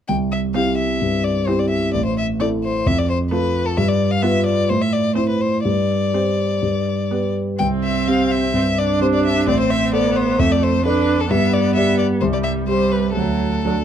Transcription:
0.08 grand piano C2, violin G5
0.32 violin E5
0.54 viola C4, grand piano C4 E4 G4, violin F5
0.78 violin E5
1.02 grand piano G2
1.24 violin D5
1.47 grand piano C4 E4 G4, viola C4, violin C5
1.59 violin D5
1.70 violin E5
1.94 grand piano A1, violin D5
2.06 violin C5
2.18 violin E5
2.40 viola C4, grand piano E4 A4, violin D5
2.64 violin C5
2.86 grand piano F2, violin E5
2.99 violin D5
3.10 violin C5
3.31 viola A3, grand piano F4 A4, violin B4
3.66 violin A4
3.77 grand piano G2, violin E5
3.89 violin D5
4.11 violin F5
4.22 viola B3, grand piano F4 B4, violin E5
4.46 violin D5
4.69 grand piano A2, violin C5
4.81 violin E5
4.92 violin D5
5.15 viola C4, grand piano E4 C5, violin C5
5.29 violin B4
5.41 violin C5
5.65 grand piano G2, violin D5
6.14 viola C4, grand piano G4 C5
6.62 grand piano G2
7.11 viola B3, grand piano G4 B4
7.59 grand piano C2, viola C4, violin G5
7.84 violin E5
8.07 grand piano C4 G4 C5, violin F5
8.31 violin E5
8.54 grand piano G2, viola C4
8.79 viola D4, violin D5
9.01 grand piano C4 G4 C5, violin C5
9.14 violin D5
9.25 violin E5
9.47 grand piano A1, viola C4, violin D5
9.60 violin C5
9.70 violin E5
9.93 viola B3, grand piano A4 C5, violin D5
10.17 violin C5
10.39 grand piano F2, viola A3, violin E5
10.52 violin D5
10.63 violin C5
10.85 viola D4, grand piano A4 D5, violin B4
11.20 violin A4
11.30 grand piano G2, viola B3, violin E5
11.53 violin D5
11.75 grand piano G4 D5, violin E5
11.98 violin D5
12.21 grand piano C2, viola G3, violin C5
12.33 violin D5
12.43 violin E5
12.68 viola G3, grand piano G4 C5, violin C5
12.91 violin B4
13.15 grand piano D2, viola F#3, violin A4
13.65 viola F#3, grand piano D4 F#4 A4

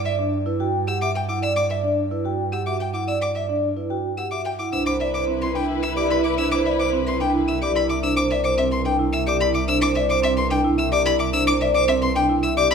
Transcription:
Already playing: double bass G2
0.05 vibraphone D5 E5, violin E5
0.19 vibraphone D4 D5
0.46 vibraphone E4 B4
0.60 vibraphone F#4 G5
0.87 vibraphone G4 F#5, violin E6
1.01 vibraphone E5, violin D6
1.15 violin G5
1.29 vibraphone E4 F#5, violin D6
1.42 vibraphone D5, violin E6
1.56 violin D6
1.70 violin E5, vibraphone E5
1.83 vibraphone D4 D5
2.11 vibraphone E4 B4
2.25 vibraphone F#4 G5
2.52 vibraphone G4 F#5, violin E6
2.66 vibraphone F#4 E5, violin D6
2.80 violin G5
2.94 vibraphone E4 F#5, violin D6
3.08 vibraphone D5, violin E6
3.21 violin D6
3.35 vibraphone D5 E5, violin E5
3.49 vibraphone D4 D5
3.77 vibraphone E4 B4
3.90 vibraphone F#4 G5
4.17 vibraphone G4 F#5, violin E6
4.31 vibraphone F#4 E5, violin D6
4.45 violin G5
4.59 vibraphone E4 F#5, violin D6
4.72 double bass C2, vibraphone D4 C5, string section E4 B4, alto flute E4, violin E6
4.86 vibraphone C5, violin D6
5.00 vibraphone D5, violin E5
5.14 vibraphone C5, violin D6
5.27 vibraphone C4
5.41 vibraphone B4, violin C6
5.55 vibraphone D4 G5, violin G5
5.69 vibraphone E4
5.82 vibraphone E5, violin E6
5.96 vibraphone G4 D5, violin D6
6.10 vibraphone E4, violin B5
6.24 vibraphone E5, violin D6
6.37 vibraphone D4 C5, violin E6
6.51 vibraphone C5, violin D6
6.65 vibraphone D5, violin E5
6.79 vibraphone C5, violin D6
6.93 vibraphone C4
7.07 vibraphone B4, violin C6
7.20 vibraphone D4 G5, violin G5
7.34 vibraphone E4
7.48 vibraphone E5, violin E6
7.62 vibraphone G4 D5, violin D6
7.75 vibraphone E4, violin B5
7.89 violin D6
8.03 vibraphone D4 C5, violin E6
8.17 vibraphone C5, violin D6
8.30 vibraphone D5, violin E5
8.44 vibraphone C5, violin D6
8.58 vibraphone C4, violin E5
8.71 vibraphone B4, violin C6
8.85 vibraphone D4 G5, violin G5
8.99 vibraphone E4
9.13 vibraphone E5, violin E6
9.27 vibraphone G4 D5, violin D6
9.40 vibraphone E4, violin B5
9.54 vibraphone E5, violin D6
9.68 vibraphone D4 C5, violin E6
9.82 vibraphone C5, violin D6
9.95 vibraphone D5, violin E5
10.09 vibraphone C5, violin D6
10.23 vibraphone C4, violin E5
10.37 vibraphone B4, violin C6
10.50 vibraphone D4 G5, violin G5
10.64 vibraphone E4
10.78 vibraphone E5, violin E6
10.92 vibraphone G4 D5, violin D6
11.06 vibraphone E4, violin B5
11.19 violin D6
11.33 vibraphone D4 C5, violin E6
11.47 vibraphone C5, violin D6
11.61 vibraphone D5, violin E5
11.74 vibraphone C5, violin D6
11.88 vibraphone C4, violin E5
12.02 vibraphone B4, violin C6
12.15 vibraphone D4 G5, violin G5
12.29 vibraphone E4
12.43 vibraphone E5, violin E6
12.57 vibraphone G4 D5, violin D6
12.71 vibraphone E4, violin B5

